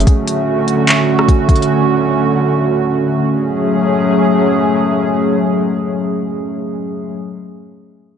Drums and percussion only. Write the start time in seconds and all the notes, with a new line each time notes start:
0.00 closed hi-hat
0.07 kick, closed hi-hat
0.28 closed hi-hat
0.68 closed hi-hat
0.88 clap, closed hi-hat
1.19 cross-stick
1.29 kick, closed hi-hat
1.49 kick, closed hi-hat
1.56 closed hi-hat
1.62 closed hi-hat